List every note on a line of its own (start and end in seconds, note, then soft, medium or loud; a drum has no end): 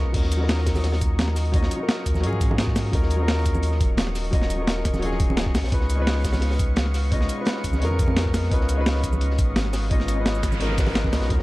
0.00 0.16 G#3 loud
0.00 0.10 B3 medium
0.00 0.13 C#4 medium
0.00 0.14 D#4 medium
0.00 0.15 F4 loud
0.00 0.14 A#4 loud
0.00 0.16 B4 medium
0.00 0.10 D#5 medium
0.00 0.16 D#5 loud
0.00 0.10 F5 medium
0.00 0.10 C#6 medium
0.06 0.13 B1 medium
0.12 1.00 D#2 loud
0.12 0.35 F#3 medium
0.12 0.37 C#4 medium
0.12 0.38 D#4 medium
0.12 0.39 F4 medium
0.12 5.51 A#4 medium
0.12 0.39 A#4 medium
0.12 5.51 D#5 medium
0.12 11.27 C#6 medium
0.12 kick loud
0.12 closed hi-hat medium
0.12 crash loud
0.23 snare medium
0.32 closed hi-hat loud
0.32 closed hi-hat medium
0.32 shaker medium
0.37 1.50 F#3 loud
0.37 1.51 C#4 medium
0.37 1.52 D#4 medium
0.42 1.52 F4 medium
0.42 1.53 A#4 loud
0.48 snare loud
0.48 closed hi-hat medium
0.48 open hi-hat medium
0.58 snare medium
0.66 kick medium
0.66 snare loud
0.66 closed hi-hat loud
0.66 open hi-hat medium
0.66 shaker medium
0.75 snare loud
0.75 open hi-hat medium
0.75 high conga medium
0.75 shaker soft
0.83 snare loud
0.83 closed hi-hat medium
0.83 open hi-hat medium
0.92 snare loud
0.92 open hi-hat medium
1.01 1.70 D#2 medium
1.01 kick loud
1.01 closed hi-hat medium
1.01 closed hi-hat loud
1.01 shaker medium
1.19 snare loud
1.19 closed hi-hat medium
1.19 high conga medium
1.28 snare soft
1.36 snare medium
1.36 closed hi-hat medium
1.36 open hi-hat medium
1.36 shaker medium
1.45 closed hi-hat soft
1.52 1.75 F#3 medium
1.52 1.77 C#4 medium
1.52 1.78 D#4 medium
1.52 1.78 F4 medium
1.52 1.79 D#5 loud
1.52 kick loud
1.52 closed hi-hat medium
1.63 snare soft
1.71 closed hi-hat medium
1.71 shaker medium
1.77 2.19 F#3 medium
1.77 2.20 C#4 medium
1.77 2.21 D#4 medium
1.81 2.22 F4 medium
1.81 2.23 A#4 medium
1.89 snare loud
1.89 closed hi-hat medium
1.98 snare soft
2.06 2.25 D#2 loud
2.06 kick medium
2.06 closed hi-hat medium
2.06 shaker medium
2.14 snare soft
2.14 high conga medium
2.14 shaker soft
2.20 2.92 G#2 loud
2.20 2.90 F#3 loud
2.20 2.90 C#4 medium
2.20 2.91 D#4 medium
2.20 closed hi-hat medium
2.25 2.92 F4 medium
2.25 2.93 G#4 loud
2.33 high conga medium
2.41 kick loud
2.41 closed hi-hat loud
2.41 closed hi-hat medium
2.41 shaker medium
2.51 high conga loud
2.58 snare loud
2.58 closed hi-hat medium
2.67 kick medium
2.67 snare medium
2.75 snare soft
2.75 snare medium
2.75 closed hi-hat medium
2.75 open hi-hat medium
2.75 shaker medium
2.85 snare soft
2.92 3.82 D#2 loud
2.92 3.15 F#3 medium
2.92 3.16 C#4 medium
2.92 3.17 D#4 medium
2.92 3.18 F4 medium
2.92 3.18 A#4 loud
2.92 kick loud
2.92 closed hi-hat medium
3.02 snare medium
3.10 closed hi-hat medium
3.10 shaker medium
3.16 4.29 F#3 loud
3.16 4.30 C#4 medium
3.16 4.31 D#4 medium
3.21 4.32 F4 medium
3.21 4.32 A#4 loud
3.28 snare loud
3.28 closed hi-hat medium
3.28 open hi-hat medium
3.37 snare medium
3.46 kick medium
3.46 closed hi-hat medium
3.46 shaker medium
3.54 high conga medium
3.54 shaker soft
3.63 closed hi-hat medium
3.71 snare soft
3.80 5.54 D#1 loud
3.80 kick loud
3.80 closed hi-hat medium
3.80 shaker medium
3.97 snare loud
3.97 closed hi-hat loud
3.97 closed hi-hat medium
3.97 high conga medium
4.07 snare soft
4.15 snare medium
4.15 closed hi-hat medium
4.15 open hi-hat medium
4.15 shaker medium
4.24 closed hi-hat soft
4.31 4.54 F#3 medium
4.31 4.56 C#4 medium
4.31 4.57 D#4 medium
4.31 4.57 F4 medium
4.31 4.58 D#5 loud
4.31 kick loud
4.31 closed hi-hat medium
4.42 snare soft
4.50 closed hi-hat medium
4.50 shaker medium
4.55 4.97 F#3 medium
4.55 4.99 C#4 medium
4.55 5.00 D#4 medium
4.60 5.01 F4 medium
4.60 5.02 A#4 medium
4.67 snare loud
4.67 closed hi-hat medium
4.67 closed hi-hat loud
4.77 snare soft
4.85 kick medium
4.85 snare medium
4.85 closed hi-hat medium
4.85 shaker medium
4.94 snare soft
4.94 high conga medium
4.94 shaker soft
4.99 5.52 F#3 loud
4.99 5.53 C#4 loud
4.99 5.54 D#4 medium
4.99 closed hi-hat medium
5.04 5.55 F4 medium
5.04 5.55 G#4 loud
5.11 snare soft
5.11 high conga medium
5.20 kick loud
5.20 closed hi-hat medium
5.20 shaker medium
5.30 high conga medium
5.37 snare loud
5.37 closed hi-hat medium
5.46 kick medium
5.46 snare soft
5.55 5.63 C#2 loud
5.55 11.27 B3 medium
5.55 11.43 D#5 medium
5.55 11.26 F5 medium
5.55 snare soft
5.55 snare loud
5.55 snare medium
5.55 open hi-hat medium
5.55 shaker medium
5.64 5.72 B1 medium
5.64 snare medium
5.64 open hi-hat medium
5.68 5.94 G#3 medium
5.68 5.95 C#4 medium
5.68 snare medium
5.68 open hi-hat medium
5.72 6.58 C#2 loud
5.72 5.96 D#4 medium
5.72 5.97 F4 medium
5.72 5.97 B4 medium
5.72 kick loud
5.72 closed hi-hat medium
5.81 snare medium
5.90 closed hi-hat medium
5.90 shaker medium
5.95 7.08 G#3 loud
5.95 7.09 C#4 medium
5.95 7.10 D#4 medium
6.00 7.11 F4 medium
6.00 7.11 B4 loud
6.07 snare loud
6.07 closed hi-hat medium
6.07 open hi-hat medium
6.16 snare medium
6.25 kick medium
6.25 snare medium
6.25 closed hi-hat medium
6.25 open hi-hat medium
6.25 shaker medium
6.33 snare loud
6.33 open hi-hat medium
6.33 high conga medium
6.33 shaker soft
6.41 snare loud
6.41 closed hi-hat medium
6.41 open hi-hat medium
6.50 snare loud
6.50 open hi-hat medium
6.59 7.28 C#2 medium
6.59 kick loud
6.59 closed hi-hat medium
6.59 shaker medium
6.76 snare loud
6.76 closed hi-hat loud
6.76 closed hi-hat medium
6.76 high conga medium
6.86 snare soft
6.94 snare medium
6.94 closed hi-hat medium
6.94 open hi-hat medium
6.94 shaker medium
7.03 closed hi-hat soft
7.10 7.33 G#3 loud
7.10 7.35 C#4 medium
7.10 7.36 D#4 medium
7.10 7.36 F4 medium
7.10 7.37 D#5 loud
7.10 kick loud
7.10 closed hi-hat medium
7.21 snare soft
7.29 closed hi-hat medium
7.29 closed hi-hat loud
7.29 shaker medium
7.35 7.77 G#3 medium
7.35 7.78 C#4 medium
7.35 7.80 D#4 medium
7.40 7.80 F4 medium
7.40 7.81 B4 medium
7.45 snare loud
7.45 closed hi-hat medium
7.56 snare medium
7.64 7.83 C#2 loud
7.64 kick medium
7.64 closed hi-hat medium
7.64 shaker medium
7.73 snare soft
7.73 high conga medium
7.73 shaker soft
7.78 8.50 F2 loud
7.78 8.48 G#3 loud
7.78 8.48 C#4 loud
7.78 8.49 D#4 medium
7.78 closed hi-hat medium
7.82 8.50 F4 medium
7.82 8.51 A#4 loud
7.82 closed hi-hat medium
7.91 high conga medium
7.99 kick loud
7.99 closed hi-hat medium
7.99 shaker medium
8.08 high conga medium
8.17 snare loud
8.17 closed hi-hat medium
8.25 kick medium
8.25 snare medium
8.34 snare soft
8.34 snare medium
8.34 closed hi-hat medium
8.34 open hi-hat medium
8.34 shaker medium
8.43 snare soft
8.50 9.40 C#2 loud
8.50 8.73 G#3 medium
8.50 8.74 C#4 medium
8.50 8.76 D#4 medium
8.50 8.76 F4 medium
8.50 8.76 B4 medium
8.50 kick loud
8.50 closed hi-hat medium
8.61 snare medium
8.69 closed hi-hat medium
8.69 closed hi-hat loud
8.69 shaker medium
8.74 9.87 G#3 loud
8.74 9.88 C#4 medium
8.74 9.89 D#4 medium
8.79 9.90 F4 medium
8.79 9.90 B4 loud
8.86 snare loud
8.86 closed hi-hat medium
8.86 open hi-hat medium
8.95 snare medium
9.04 kick medium
9.04 closed hi-hat loud
9.04 closed hi-hat medium
9.04 shaker medium
9.13 high conga medium
9.13 shaker soft
9.21 closed hi-hat medium
9.30 snare soft
9.38 11.12 G#1 loud
9.38 kick loud
9.38 closed hi-hat medium
9.38 closed hi-hat loud
9.38 shaker medium
9.56 snare loud
9.56 closed hi-hat medium
9.56 closed hi-hat loud
9.56 high conga medium
9.65 snare soft
9.73 snare loud
9.73 open hi-hat medium
9.73 shaker medium
9.82 snare medium
9.89 10.12 G#3 medium
9.89 10.14 C#4 medium
9.89 10.15 D#4 medium
9.89 10.15 F4 medium
9.89 10.16 D#5 loud
9.89 kick loud
9.89 closed hi-hat medium
9.89 noise sweep medium
10.00 snare soft
10.08 closed hi-hat medium
10.08 closed hi-hat loud
10.08 shaker medium
10.14 10.57 G#3 medium
10.14 10.58 C#4 medium
10.14 10.58 D#4 medium
10.18 10.59 F4 medium
10.18 10.60 B4 medium
10.25 snare loud
10.25 closed hi-hat medium
10.35 snare medium
10.35 shaker soft
10.43 kick medium
10.43 snare medium
10.43 closed hi-hat medium
10.43 closed hi-hat loud
10.43 shaker medium
10.52 snare soft
10.52 high conga medium
10.52 shaker soft
10.59 10.75 G#3 loud
10.59 10.76 C#4 medium
10.59 10.76 D#4 loud
10.59 10.77 F4 medium
10.59 10.77 A#4 loud
10.59 closed hi-hat medium
10.69 snare soft
10.69 high conga medium
10.76 11.10 G#3 medium
10.76 11.10 C#4 medium
10.76 11.11 D#4 medium
10.76 11.11 F4 medium
10.76 11.12 B4 medium
10.76 kick loud
10.76 snare loud
10.76 closed hi-hat loud
10.76 open hi-hat medium
10.76 shaker medium
10.86 snare loud
10.86 open hi-hat medium
10.86 high conga medium
10.95 snare loud
10.95 closed hi-hat medium
11.04 kick medium
11.04 snare medium
11.04 high conga medium
11.11 11.21 C#2 loud
11.11 11.22 G#3 medium
11.11 11.23 C#4 medium
11.11 11.23 D#4 medium
11.11 11.24 F4 medium
11.11 11.24 B4 medium
11.11 snare loud
11.11 snare soft
11.11 snare medium
11.11 open hi-hat medium
11.11 shaker medium
11.21 11.30 B1 medium
11.21 snare loud
11.21 open hi-hat medium
11.29 11.43 D#2 loud
11.29 11.43 F#3 medium
11.29 11.43 C#4 medium
11.29 11.43 D#4 medium
11.29 11.43 F4 medium
11.29 11.43 A#4 medium
11.29 11.43 C#6 medium
11.29 kick loud
11.29 closed hi-hat medium
11.39 snare medium